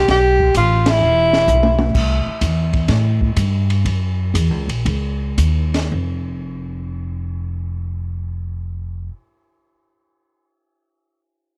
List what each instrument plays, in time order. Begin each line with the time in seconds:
0.08 upright bass B1, tenor saxophone G4, kick, snare, ride
0.40 kick
0.55 upright bass A1, tenor saxophone F4, kick, hi-hat pedal, ride
0.86 snare, ride
0.91 tenor saxophone E4
1.01 upright bass E1
1.33 snare
1.47 upright bass B1, floor tom, hi-hat pedal
1.63 high tom
1.79 high tom
1.94 upright bass C2, kick, crash
2.26 muted upright bass stroke
2.41 upright bass E2, kick, hi-hat pedal, ride
2.73 kick, ride
2.88 upright bass A2, kick, snare, ride
3.21 kick
3.36 upright bass G2, kick, hi-hat pedal, ride
3.70 ride
3.85 upright bass F#2, kick, ride
4.34 upright bass E2, kick, hi-hat pedal, ride
4.50 upright bass C#2
4.67 upright bass A#1, ride
4.85 upright bass C#2, kick, ride
5.38 upright bass D#2, kick, hi-hat pedal, ride
5.74 snare, ride
5.91 upright bass F1